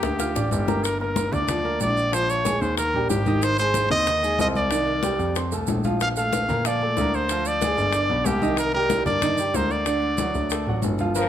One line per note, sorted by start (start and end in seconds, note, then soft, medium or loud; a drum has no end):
0.00 0.34 D2 medium
0.00 0.14 A#3 medium
0.00 0.49 G4 medium
0.00 0.14 A#4 medium
0.00 0.14 A#5 medium
0.00 high bongo loud
0.00 high conga soft
0.00 maracas soft
0.19 0.33 F4 medium
0.19 0.33 F5 medium
0.19 0.33 F6 medium
0.19 high bongo medium
0.19 high conga soft
0.19 maracas medium
0.35 0.51 A1 medium
0.35 0.62 D4 medium
0.35 0.62 D5 medium
0.35 0.62 D6 medium
0.35 low bongo medium
0.35 high conga soft
0.35 maracas medium
0.51 1.27 G1 medium
0.51 0.85 G4 medium
0.51 high conga medium
0.51 maracas medium
0.67 0.81 A#3 medium
0.67 0.81 A#4 medium
0.67 0.81 A#5 medium
0.67 low bongo loud
0.67 high conga medium
0.67 maracas soft
0.84 1.00 A#4 loud
0.84 high bongo medium
0.84 high conga soft
0.84 maracas medium
1.00 1.28 A#3 medium
1.00 1.35 A#4 medium
1.00 1.28 A#4 medium
1.00 1.28 A#5 medium
1.00 high bongo soft
1.00 high conga soft
1.16 high bongo medium
1.16 high conga loud
1.16 maracas medium
1.32 1.77 D2 medium
1.32 1.46 D4 medium
1.32 1.46 D5 medium
1.32 1.81 D5 loud
1.32 1.46 D6 medium
1.32 high bongo soft
1.32 high conga soft
1.32 low conga medium
1.32 maracas soft
1.48 1.62 F3 medium
1.48 1.62 F4 medium
1.48 1.62 F5 medium
1.48 high bongo medium
1.48 high conga soft
1.48 low conga medium
1.48 maracas medium
1.64 1.78 A#3 medium
1.64 1.78 A#4 medium
1.64 1.78 A#5 medium
1.64 high conga soft
1.80 2.56 A#1 medium
1.80 2.08 D4 medium
1.80 2.08 D5 medium
1.80 2.16 D5 loud
1.80 2.08 D6 medium
1.80 high bongo soft
1.80 low bongo medium
1.80 high conga medium
1.80 maracas medium
1.97 maracas soft
2.12 2.39 F3 medium
2.12 2.39 F4 medium
2.12 2.32 C5 loud
2.12 2.40 F5 medium
2.12 high bongo medium
2.12 high conga soft
2.12 maracas medium
2.29 2.63 C#5 medium
2.29 high bongo soft
2.29 high conga soft
2.29 maracas medium
2.45 2.72 G#3 medium
2.45 2.72 G#4 medium
2.45 2.72 G#5 medium
2.45 high bongo medium
2.45 high conga medium
2.45 maracas medium
2.61 2.92 D#2 medium
2.61 2.77 C5 medium
2.61 high bongo soft
2.61 high conga soft
2.61 maracas soft
2.77 2.92 A#3 medium
2.77 3.08 A#4 loud
2.77 2.92 A#4 medium
2.77 2.92 A#5 medium
2.77 high bongo medium
2.77 high conga soft
2.77 maracas medium
2.93 3.09 A#1 medium
2.93 3.21 G3 medium
2.93 3.21 G4 medium
2.93 3.22 G5 medium
2.93 high conga soft
3.09 3.85 G#1 medium
3.09 3.45 G4 loud
3.09 high bongo soft
3.09 low bongo medium
3.09 high conga medium
3.09 maracas medium
3.26 3.53 D#3 medium
3.26 3.53 D#4 medium
3.26 3.54 D#5 medium
3.26 high conga medium
3.26 maracas soft
3.42 3.59 C5 loud
3.42 high bongo medium
3.42 high conga soft
3.42 maracas medium
3.58 3.86 G#3 medium
3.58 3.86 G#4 medium
3.58 3.89 C5 loud
3.58 3.86 G#5 medium
3.58 high bongo soft
3.58 high conga soft
3.58 maracas medium
3.74 high bongo medium
3.74 high conga medium
3.74 maracas medium
3.90 4.36 D#2 medium
3.90 4.04 C4 medium
3.90 4.04 C5 medium
3.90 4.36 D#5 loud
3.90 4.04 C6 medium
3.90 high bongo soft
3.90 high conga soft
3.90 low conga medium
3.90 maracas soft
4.07 4.21 D#3 medium
4.07 4.21 D#4 medium
4.07 4.21 D#5 medium
4.07 high bongo medium
4.07 high conga soft
4.07 maracas medium
4.23 4.36 G#3 medium
4.23 4.36 G#4 medium
4.23 4.36 G#5 medium
4.23 high conga soft
4.23 maracas medium
4.39 5.14 C2 loud
4.39 4.66 C4 medium
4.39 4.66 C5 medium
4.39 4.48 D#5 loud
4.39 4.66 C6 medium
4.39 high bongo soft
4.39 low bongo medium
4.39 high conga medium
4.39 maracas medium
4.55 5.49 D5 loud
4.55 high conga medium
4.55 maracas soft
4.71 4.98 D#3 medium
4.71 4.98 D#4 medium
4.71 4.98 D5 medium
4.71 high bongo medium
4.71 high conga soft
4.71 maracas medium
4.87 high bongo soft
4.87 high conga soft
5.03 5.30 G3 medium
5.03 5.30 G4 medium
5.03 5.30 G5 medium
5.03 high bongo medium
5.03 high conga medium
5.03 maracas medium
5.19 5.50 F2 medium
5.19 high bongo soft
5.19 high conga soft
5.19 maracas soft
5.35 5.50 C4 medium
5.35 5.50 C5 medium
5.35 5.50 C6 medium
5.35 high bongo medium
5.35 high conga soft
5.35 maracas medium
5.52 5.67 C2 medium
5.52 5.79 A3 medium
5.52 5.79 A4 medium
5.52 5.79 A5 medium
5.52 high conga soft
5.52 maracas medium
5.67 6.43 A#1 medium
5.67 high bongo soft
5.67 low bongo medium
5.67 high conga medium
5.67 maracas medium
5.84 6.11 F3 medium
5.84 6.11 F4 medium
5.84 6.12 F5 medium
5.84 high conga medium
5.84 maracas soft
6.00 6.09 F5 loud
6.00 high bongo medium
6.00 high conga soft
6.00 maracas medium
6.16 6.44 A3 medium
6.16 6.44 A4 medium
6.16 6.68 F5 loud
6.16 6.44 A5 medium
6.16 high bongo soft
6.16 high conga soft
6.16 maracas medium
6.33 high bongo medium
6.33 high conga medium
6.33 maracas medium
6.49 6.94 A#2 medium
6.49 6.62 A#3 medium
6.49 6.63 A#4 medium
6.49 6.63 A#5 medium
6.49 high bongo soft
6.49 high conga soft
6.49 low conga medium
6.49 maracas soft
6.65 6.79 F3 medium
6.65 6.79 F4 medium
6.65 7.16 D5 loud
6.65 6.79 F5 medium
6.65 high bongo medium
6.65 high conga soft
6.65 maracas medium
6.82 6.95 A3 medium
6.82 6.96 A4 medium
6.82 6.95 A5 medium
6.82 high conga soft
6.97 7.72 D2 loud
6.97 7.26 A#3 medium
6.97 7.25 A#4 medium
6.97 7.26 A#5 medium
6.97 high bongo soft
6.97 low bongo medium
6.97 high conga medium
6.97 maracas medium
7.14 7.49 C5 loud
7.14 maracas soft
7.29 7.57 F3 medium
7.29 7.57 F4 medium
7.29 7.57 F5 medium
7.29 high bongo medium
7.29 high conga soft
7.29 maracas medium
7.45 8.28 D5 loud
7.45 high bongo soft
7.45 high conga soft
7.45 maracas medium
7.62 7.89 G#3 medium
7.62 7.89 G#4 medium
7.62 7.89 G#5 medium
7.62 high bongo medium
7.62 high conga medium
7.62 maracas medium
7.77 8.08 G1 medium
7.77 high bongo soft
7.77 high conga soft
7.77 maracas soft
7.93 8.07 D4 medium
7.93 8.07 D5 medium
7.93 8.08 D6 medium
7.93 high bongo medium
7.93 high conga soft
7.93 maracas medium
8.09 8.25 B1 medium
8.09 8.37 B3 medium
8.09 8.37 B4 medium
8.09 8.37 B5 medium
8.09 high conga soft
8.25 9.01 C2 loud
8.25 8.58 G4 medium
8.25 high bongo soft
8.25 low bongo medium
8.25 high conga medium
8.25 maracas medium
8.42 8.69 D#3 medium
8.42 8.69 D#4 medium
8.42 8.69 D#5 medium
8.42 high conga medium
8.42 maracas soft
8.57 8.74 A#4 loud
8.57 high bongo medium
8.57 high conga soft
8.57 maracas medium
8.74 9.01 G3 medium
8.74 9.02 G4 medium
8.74 9.04 A#4 loud
8.74 9.02 G5 medium
8.74 high bongo soft
8.74 high conga soft
8.90 high bongo medium
8.90 high conga medium
8.90 maracas medium
9.06 9.51 G2 medium
9.06 9.20 A#3 medium
9.06 9.20 A#4 medium
9.06 9.57 D5 loud
9.06 9.20 A#5 medium
9.06 high bongo soft
9.06 high conga soft
9.06 low conga medium
9.06 maracas soft
9.22 9.36 D#3 medium
9.22 9.36 D#4 medium
9.22 9.36 D#5 medium
9.22 high bongo medium
9.22 high conga soft
9.22 low conga medium
9.22 maracas medium
9.38 9.52 G3 medium
9.38 9.52 G4 medium
9.38 9.53 G5 medium
9.38 high conga soft
9.38 maracas medium
9.54 10.29 D2 loud
9.54 9.82 A#3 medium
9.54 9.82 A#4 medium
9.54 9.73 C5 medium
9.54 9.82 A#5 medium
9.54 high bongo soft
9.54 low bongo medium
9.54 high conga medium
9.54 maracas medium
9.70 10.84 D5 medium
9.70 maracas soft
9.86 10.13 D3 medium
9.86 10.13 D4 medium
9.86 10.14 D5 medium
9.86 high bongo medium
9.86 maracas medium
10.02 high bongo soft
10.02 high conga soft
10.18 10.46 F#3 medium
10.18 10.46 F#4 medium
10.18 10.46 F#5 medium
10.18 high bongo medium
10.18 high conga medium
10.18 maracas medium
10.35 10.65 D2 medium
10.35 high bongo soft
10.35 high conga soft
10.35 maracas soft
10.50 10.65 A3 medium
10.50 10.65 A4 medium
10.50 10.65 A5 medium
10.50 high bongo medium
10.50 high conga soft
10.50 maracas medium
10.66 10.82 A1 medium
10.66 10.94 F#3 medium
10.66 10.94 F#4 medium
10.66 10.95 F#5 medium
10.66 high conga soft
10.82 11.29 G1 medium
10.82 high bongo soft
10.82 low bongo medium
10.82 high conga medium
10.82 maracas medium
10.99 11.13 F3 medium
10.99 11.13 F4 medium
10.99 11.13 F5 medium
10.99 high conga medium
10.99 maracas soft
11.15 11.29 F3 loud
11.15 11.29 A#4 medium
11.15 cowbell loud
11.15 high conga soft
11.15 maracas medium